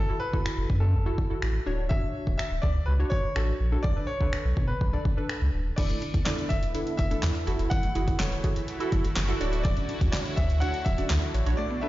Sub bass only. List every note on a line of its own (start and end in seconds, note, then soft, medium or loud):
0.33 0.42 A1 medium
0.58 0.66 F#1 loud
0.70 0.95 F#2 loud
0.94 1.11 F#1 loud
1.42 1.59 A1 medium
1.66 1.92 D1 loud
2.27 2.36 D1 medium
2.51 2.60 D1 medium
2.63 2.80 D2 medium
2.88 3.05 C#2 medium
3.36 3.53 A1 medium
3.60 3.77 A#1 medium
3.84 3.93 B1 loud
4.21 4.29 C#2 medium
4.45 4.53 B1 loud
4.57 4.74 B2 loud
4.81 4.98 B1 loud
5.42 5.50 C#2 medium
5.54 5.71 D#1 loud
5.78 5.95 E1 loud
6.14 6.23 E2 loud
6.50 6.76 E1 medium
6.99 7.16 E1 medium
7.23 7.32 E2 loud
7.47 7.56 F#1 loud
7.59 7.68 F1 loud
7.71 7.88 F#1 loud
7.96 8.13 F#1 loud
8.20 8.37 E1 loud
8.92 9.09 F#1 loud
9.17 9.34 F#1 loud
9.41 9.75 D1 loud
10.01 10.10 D2 medium
10.37 10.63 D2 loud
10.86 11.03 D1 medium
11.10 11.19 D2 loud
11.34 11.43 A1 medium
11.46 11.55 A#1 medium